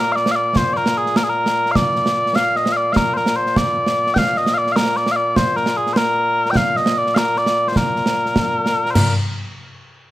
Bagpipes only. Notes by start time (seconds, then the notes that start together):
Already playing: A#2 A#4
0.12 D5 F5
0.31 F5
0.36 D5
0.57 C5
0.73 A#4 D5
0.97 G#4
1.17 A#4
1.24 G#4
1.29 A#4
1.72 F5
1.76 D5
2.35 F5
2.56 D#5
2.72 F5
2.77 D5
2.93 F5
2.97 A#4
3.14 A#4 C5
3.36 C5
3.57 D5
4.14 G5
4.18 F5
4.37 D#5
4.54 D5 F5
4.72 F5
4.76 A#4
4.97 D5
5.12 F5
5.16 D5
5.37 C5
5.57 A#4
5.77 G#4
5.93 C5
5.97 A#4
6.51 G5
6.57 F5
6.77 D#5
6.98 D5
7.14 A#4 F5
7.38 D5
7.68 C5
7.77 A#4
8.91 A#4 C5